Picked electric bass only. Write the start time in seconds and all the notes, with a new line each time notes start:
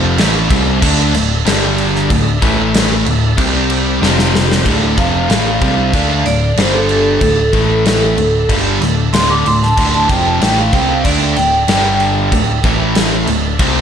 Already playing: F1
0.18 A1
0.51 C2
0.82 D2
1.14 D1
1.46 G1
2.10 D1
2.42 A1
3.06 D1
3.38 C2
4.02 F1
4.66 D1
4.98 F1
5.30 A1
5.61 C2
5.94 D2
6.25 D1
6.56 G1
7.21 D1
7.53 A1
8.18 D1
8.49 G1
8.81 D1
9.13 D1
9.45 D1
9.78 D1
10.09 F1
10.41 A1
10.73 C2
11.05 D2
11.37 D1
11.68 G1
12.32 D1
12.64 A1
13.27 D1
13.59 C2